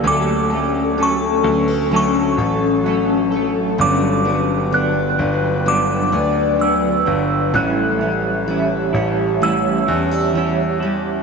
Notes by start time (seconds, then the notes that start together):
Already playing: G3 A#3 D4 A4
0.03 D2 D3 F#3 A3 C#4 A5
0.07 A4 D6
0.50 C#4 A4
0.55 A3
0.96 F#3 A3 C#4
1.01 A4 C#6
1.43 D2 B3 C#4 A4
1.48 A3
1.68 C#4
1.91 D3 F#3 A3 C#4 A4
1.96 C#6
2.37 A1 C#4 A4
2.42 A3
2.84 F#3 A3 C#4
2.89 A4
3.31 A3 C#4 A4
3.36 A3
3.78 G1 G2 D3 F#3 B3 D4 B4 D5 G5 D6
4.24 B3 D4
4.29 F#3
4.71 D3 F#3 B3 F#6
4.76 D4
5.18 G1 B3 D4
5.23 F#3
5.65 G2 D3 F#3 B3 D4 D6
6.12 D2 B3 D4
6.17 F#3
6.58 D3 F#3 B3 E6
6.64 D4
7.05 G1 B3 D4
7.10 F#3
7.53 A1 A2 E3 G3 C#4 E4 G4 C#5 E5 A5 F#6
7.99 C#4 E4
8.04 G3
8.46 E3 G3 C#4
8.52 E4
8.93 A1 C#4 E4
8.98 G3
9.41 A2 E3 G3 C#4 E4 F#5 E6
9.86 E2 C#4 D4 E4
9.91 G3
10.11 E4
10.33 E3 G3 C#4
10.38 E4
10.80 C#4 E4
10.85 G3